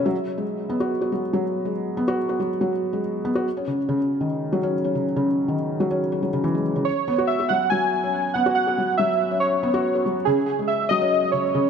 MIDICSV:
0, 0, Header, 1, 3, 480
1, 0, Start_track
1, 0, Tempo, 425532
1, 63, Time_signature, 4, 2, 24, 8
1, 13195, End_track
2, 0, Start_track
2, 0, Title_t, "Synth keys"
2, 0, Program_c, 0, 88
2, 7725, Note_on_c, 0, 73, 112
2, 8204, Note_on_c, 0, 76, 105
2, 8229, Note_off_c, 0, 73, 0
2, 8445, Note_on_c, 0, 78, 107
2, 8461, Note_off_c, 0, 76, 0
2, 8676, Note_off_c, 0, 78, 0
2, 8683, Note_on_c, 0, 80, 113
2, 9368, Note_off_c, 0, 80, 0
2, 9405, Note_on_c, 0, 78, 104
2, 9630, Note_off_c, 0, 78, 0
2, 9643, Note_on_c, 0, 78, 116
2, 10099, Note_off_c, 0, 78, 0
2, 10123, Note_on_c, 0, 76, 109
2, 10579, Note_off_c, 0, 76, 0
2, 10603, Note_on_c, 0, 73, 102
2, 11288, Note_off_c, 0, 73, 0
2, 11562, Note_on_c, 0, 68, 101
2, 11788, Note_off_c, 0, 68, 0
2, 11802, Note_on_c, 0, 68, 87
2, 12042, Note_on_c, 0, 76, 103
2, 12060, Note_off_c, 0, 68, 0
2, 12282, Note_on_c, 0, 75, 107
2, 12300, Note_off_c, 0, 76, 0
2, 12738, Note_off_c, 0, 75, 0
2, 12762, Note_on_c, 0, 73, 99
2, 13195, Note_off_c, 0, 73, 0
2, 13195, End_track
3, 0, Start_track
3, 0, Title_t, "Felt piano"
3, 0, Program_c, 1, 0
3, 0, Control_c, 1, 64, 127
3, 64, Note_on_c, 1, 54, 104
3, 80, Control_c, 1, 64, 0
3, 167, Note_off_c, 1, 54, 0
3, 248, Control_c, 1, 64, 127
3, 425, Note_on_c, 1, 56, 75
3, 486, Note_off_c, 1, 56, 0
3, 785, Note_on_c, 1, 59, 102
3, 846, Note_off_c, 1, 59, 0
3, 905, Note_on_c, 1, 66, 94
3, 1007, Note_off_c, 1, 66, 0
3, 1145, Note_on_c, 1, 66, 75
3, 1247, Note_off_c, 1, 66, 0
3, 1265, Note_on_c, 1, 54, 75
3, 1367, Note_off_c, 1, 54, 0
3, 1505, Note_on_c, 1, 54, 108
3, 1607, Note_off_c, 1, 54, 0
3, 1864, Note_on_c, 1, 56, 75
3, 1925, Note_off_c, 1, 56, 0
3, 2225, Note_on_c, 1, 59, 102
3, 2286, Note_off_c, 1, 59, 0
3, 2344, Note_on_c, 1, 66, 105
3, 2447, Note_off_c, 1, 66, 0
3, 2584, Note_on_c, 1, 66, 77
3, 2687, Note_off_c, 1, 66, 0
3, 2704, Note_on_c, 1, 54, 79
3, 2807, Note_off_c, 1, 54, 0
3, 2943, Note_on_c, 1, 54, 99
3, 3046, Note_off_c, 1, 54, 0
3, 3304, Note_on_c, 1, 56, 79
3, 3365, Note_off_c, 1, 56, 0
3, 3664, Note_on_c, 1, 59, 101
3, 3725, Note_off_c, 1, 59, 0
3, 3783, Note_on_c, 1, 66, 102
3, 3886, Note_off_c, 1, 66, 0
3, 3919, Control_c, 1, 64, 0
3, 4024, Note_on_c, 1, 61, 77
3, 4091, Control_c, 1, 64, 127
3, 4127, Note_off_c, 1, 61, 0
3, 4144, Note_on_c, 1, 49, 77
3, 4247, Note_off_c, 1, 49, 0
3, 4384, Note_on_c, 1, 49, 101
3, 4487, Note_off_c, 1, 49, 0
3, 4744, Note_on_c, 1, 51, 73
3, 4806, Note_off_c, 1, 51, 0
3, 5104, Note_on_c, 1, 54, 100
3, 5166, Note_off_c, 1, 54, 0
3, 5225, Note_on_c, 1, 61, 100
3, 5327, Note_off_c, 1, 61, 0
3, 5464, Note_on_c, 1, 61, 73
3, 5567, Note_off_c, 1, 61, 0
3, 5584, Note_on_c, 1, 49, 75
3, 5687, Note_off_c, 1, 49, 0
3, 5824, Note_on_c, 1, 49, 103
3, 5927, Note_off_c, 1, 49, 0
3, 6184, Note_on_c, 1, 51, 78
3, 6246, Note_off_c, 1, 51, 0
3, 6544, Note_on_c, 1, 54, 108
3, 6605, Note_off_c, 1, 54, 0
3, 6664, Note_on_c, 1, 61, 96
3, 6767, Note_off_c, 1, 61, 0
3, 6904, Note_on_c, 1, 61, 76
3, 7007, Note_off_c, 1, 61, 0
3, 7023, Note_on_c, 1, 54, 74
3, 7085, Note_off_c, 1, 54, 0
3, 7143, Note_on_c, 1, 49, 102
3, 7257, Note_off_c, 1, 49, 0
3, 7263, Note_on_c, 1, 52, 104
3, 7377, Note_off_c, 1, 52, 0
3, 7383, Note_on_c, 1, 56, 71
3, 7445, Note_off_c, 1, 56, 0
3, 7623, Note_on_c, 1, 49, 98
3, 7737, Note_off_c, 1, 49, 0
3, 7758, Control_c, 1, 64, 0
3, 7972, Control_c, 1, 64, 127
3, 7984, Note_on_c, 1, 59, 103
3, 8045, Note_off_c, 1, 59, 0
3, 8103, Note_on_c, 1, 66, 99
3, 8206, Note_off_c, 1, 66, 0
3, 8344, Note_on_c, 1, 66, 77
3, 8447, Note_off_c, 1, 66, 0
3, 8464, Note_on_c, 1, 54, 77
3, 8566, Note_off_c, 1, 54, 0
3, 8703, Note_on_c, 1, 54, 98
3, 8806, Note_off_c, 1, 54, 0
3, 9064, Note_on_c, 1, 61, 76
3, 9167, Note_off_c, 1, 61, 0
3, 9424, Note_on_c, 1, 59, 101
3, 9485, Note_off_c, 1, 59, 0
3, 9544, Note_on_c, 1, 66, 103
3, 9646, Note_off_c, 1, 66, 0
3, 9784, Note_on_c, 1, 66, 78
3, 9887, Note_off_c, 1, 66, 0
3, 9904, Note_on_c, 1, 54, 80
3, 10007, Note_off_c, 1, 54, 0
3, 10144, Note_on_c, 1, 54, 106
3, 10247, Note_off_c, 1, 54, 0
3, 10504, Note_on_c, 1, 61, 74
3, 10607, Note_off_c, 1, 61, 0
3, 10864, Note_on_c, 1, 59, 101
3, 10925, Note_off_c, 1, 59, 0
3, 10984, Note_on_c, 1, 66, 103
3, 11087, Note_off_c, 1, 66, 0
3, 11225, Note_on_c, 1, 66, 72
3, 11327, Note_off_c, 1, 66, 0
3, 11344, Note_on_c, 1, 54, 77
3, 11447, Note_off_c, 1, 54, 0
3, 11584, Note_on_c, 1, 49, 108
3, 11597, Control_c, 1, 64, 0
3, 11687, Note_off_c, 1, 49, 0
3, 11775, Control_c, 1, 64, 127
3, 11944, Note_on_c, 1, 56, 77
3, 12047, Note_off_c, 1, 56, 0
3, 12304, Note_on_c, 1, 54, 106
3, 12365, Note_off_c, 1, 54, 0
3, 12423, Note_on_c, 1, 61, 99
3, 12526, Note_off_c, 1, 61, 0
3, 12663, Note_on_c, 1, 61, 74
3, 12766, Note_off_c, 1, 61, 0
3, 12784, Note_on_c, 1, 49, 77
3, 12887, Note_off_c, 1, 49, 0
3, 13024, Note_on_c, 1, 49, 104
3, 13127, Note_off_c, 1, 49, 0
3, 13195, End_track
0, 0, End_of_file